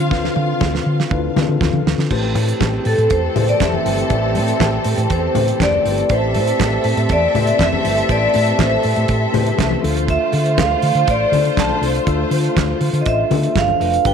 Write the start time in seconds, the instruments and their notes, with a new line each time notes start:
Already playing: tine electric piano D3 C4 D4 E4 F4 C5, fingered electric bass D3, french horn section D3 C4 F4, string section F4 F5
0.10 fingered electric bass D2, tine electric piano D3 C4 D4 F4 B4, kick, snare
0.18 tine electric piano C5
0.25 snare
0.36 fingered electric bass D3, muted conga
0.61 fingered electric bass D2, kick, snare, high conga
0.75 snare
0.86 fingered electric bass D3
1.00 snare
1.10 fingered electric bass D2, tine electric piano D3 D4 E4 F4 B4, kick, muted conga
1.35 tine electric piano D3 C4 D4 F4 A4, fingered electric bass D3, snare, muted conga, low conga
1.49 fingered electric bass D3
1.61 fingered electric bass D2, kick, snare, high conga
1.73 fingered electric bass D3, high conga
1.86 fingered electric bass D2, snare
1.98 fingered electric bass D3, snare
2.10 fingered electric bass A1, string section E3 C4 A4, tine electric piano A3 E4 G4 B4 C5, french horn section A3 C4 G4, kick, crash
2.35 fingered electric bass A2, open hi-hat, muted conga
2.48 closed hi-hat
2.61 fingered electric bass A1, kick, snare, clap, closed hi-hat, high conga
2.85 fingered electric bass A2, vibraphone A4, open hi-hat
2.98 fingered electric bass A2, closed hi-hat
3.10 fingered electric bass E2, vibraphone C5, kick, closed hi-hat, muted conga
3.35 fingered electric bass A2, tine electric piano A3 E4 G4 B4 C5, open hi-hat, muted conga, low conga
3.48 vibraphone D5, closed hi-hat
3.60 fingered electric bass F1, vibraphone E5, kick, snare, clap, closed hi-hat, high conga
3.73 high conga
3.84 fingered electric bass G1, tine electric piano A3 E4 G4 B4 C5, open hi-hat
3.98 closed hi-hat
4.09 fingered electric bass A1, tine electric piano A3 E4 G4 B4 D5, kick, closed hi-hat
4.35 fingered electric bass A2, open hi-hat, muted conga
4.48 closed hi-hat
4.60 fingered electric bass A1, kick, snare, clap, closed hi-hat, high conga
4.84 fingered electric bass A2, open hi-hat
4.98 fingered electric bass A2, closed hi-hat
5.10 fingered electric bass E2, vibraphone C5, kick, closed hi-hat, muted conga
5.34 fingered electric bass A2, tine electric piano A3 E4 G4 B4 C5, open hi-hat, muted conga, low conga
5.48 closed hi-hat
5.60 fingered electric bass F1, vibraphone D5, kick, snare, clap, closed hi-hat, high conga
5.73 high conga
5.84 fingered electric bass G1, tine electric piano A3 E4 G4 B4 C5, open hi-hat
5.98 closed hi-hat
6.09 fingered electric bass A1, tine electric piano A3 E4 G4 C5 D5, string section C4 A4 E5, vibraphone C5, kick, closed hi-hat
6.34 fingered electric bass A2, open hi-hat, muted conga
6.47 closed hi-hat
6.59 fingered electric bass A1, vibraphone C5, kick, snare, clap, closed hi-hat, high conga
6.84 fingered electric bass A2, open hi-hat
6.97 fingered electric bass A2, closed hi-hat
7.09 fingered electric bass E2, vibraphone D5, kick, closed hi-hat, muted conga
7.34 fingered electric bass A2, tine electric piano A3 E4 G4 B4 C5, open hi-hat, muted conga, low conga
7.47 closed hi-hat
7.59 fingered electric bass F1, vibraphone E5, kick, snare, clap, closed hi-hat, high conga
7.73 high conga
7.84 fingered electric bass G1, tine electric piano A3 E4 G4 B4 C5, open hi-hat
7.97 closed hi-hat
8.08 fingered electric bass A1, tine electric piano A3 E4 G4 B4 C5, vibraphone D5, kick, closed hi-hat
8.34 fingered electric bass A2, open hi-hat, muted conga
8.47 closed hi-hat
8.59 fingered electric bass A1, vibraphone C5, kick, snare, clap, closed hi-hat, high conga
8.83 fingered electric bass A2, open hi-hat
8.96 fingered electric bass A2, closed hi-hat
9.08 fingered electric bass A2, kick, closed hi-hat, muted conga
9.33 fingered electric bass A2, tine electric piano A3 E4 G4 B4 C5, open hi-hat, muted conga, low conga
9.46 closed hi-hat
9.58 fingered electric bass C2, kick, snare, clap, closed hi-hat, high conga
9.71 high conga
9.83 fingered electric bass D2, french horn section D3 F4, string section A3 F4 C5, tine electric piano D4 F4 A4, open hi-hat
9.97 closed hi-hat
10.08 vibraphone E5, kick, closed hi-hat
10.32 fingered electric bass D3, open hi-hat, muted conga
10.46 closed hi-hat
10.58 fingered electric bass D2, vibraphone F5, kick, snare, clap, closed hi-hat, high conga
10.82 fingered electric bass D3, open hi-hat
10.95 fingered electric bass D3, closed hi-hat
11.07 fingered electric bass A1, vibraphone D5, kick, closed hi-hat
11.32 fingered electric bass D3, tine electric piano D4 F4 A4, open hi-hat, muted conga, low conga
11.45 closed hi-hat
11.57 fingered electric bass B1, vibraphone A5, kick, snare, clap, closed hi-hat, high conga
11.70 high conga
11.81 fingered electric bass C2, tine electric piano D4 F4 A4, open hi-hat
11.95 closed hi-hat
12.07 fingered electric bass D2, tine electric piano D4 F4 A4, kick, closed hi-hat
12.31 fingered electric bass D3, open hi-hat, muted conga
12.44 closed hi-hat
12.57 fingered electric bass D2, kick, snare, clap, closed hi-hat, high conga
12.81 fingered electric bass D3, open hi-hat
12.93 fingered electric bass D3, closed hi-hat
13.01 vibraphone D#5
13.06 fingered electric bass A1, vibraphone E5, kick, closed hi-hat
13.30 fingered electric bass D3, tine electric piano D4 F4 A4, open hi-hat, muted conga, low conga
13.43 closed hi-hat
13.55 fingered electric bass G1, vibraphone F5, kick, snare, clap, closed hi-hat, high conga
13.68 high conga
13.80 fingered electric bass F1, tine electric piano D4 F4 B4, open hi-hat
13.94 closed hi-hat
14.05 fingered electric bass G1, french horn section G3 D4 B4, string section G3 D4 B4, tine electric piano D4 G4 B4, vibraphone G5, kick, closed hi-hat